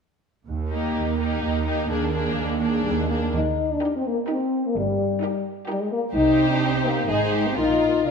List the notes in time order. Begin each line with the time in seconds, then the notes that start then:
0.46 D#2
0.71 A#3 D#4 G4
0.95 D#2
1.19 A#3 D#4 G4
1.42 D#2
1.66 A#3 D#4 G4
1.89 D#2 A#3 D4 G#4
2.13 A#3 D4 G#4
2.37 D#2
2.60 A#3 D4 G#4
2.85 D#2 G3
2.98 G#3
3.09 A#3 D4 G#4
3.33 D#2 D#4
3.71 D4
3.81 D#4 G4 A#4
3.95 C4
4.06 A#3
4.28 C4 D#4 G4 A#4
4.66 A#3
4.76 G1 G2 G3
5.22 D#4 G4 A#4
5.68 G3 D#4 G4 A#4
5.81 G#3
5.91 A#3
6.13 C2 C3 D#4 G4 C5
6.49 D4
6.74 C4
6.85 A#3
7.08 G#1 G#2 G#3 D#4 G#4 C5
7.33 G4
7.46 C4
7.57 A#1 A#2 D#4 F4 A#4
8.06 C3 D4 F4 A#4